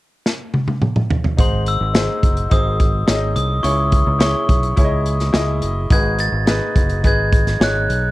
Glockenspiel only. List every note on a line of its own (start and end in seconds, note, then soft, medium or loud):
1.40 1.68 C6 medium
1.68 2.20 E6 loud
2.52 3.35 D#6 loud
3.36 3.65 D#6 medium
3.63 4.17 C#6 medium
4.21 5.59 C#6 medium
5.92 6.21 G#6 medium
6.20 6.72 A6 loud
7.07 7.64 G#6 medium
7.63 8.11 F#6 loud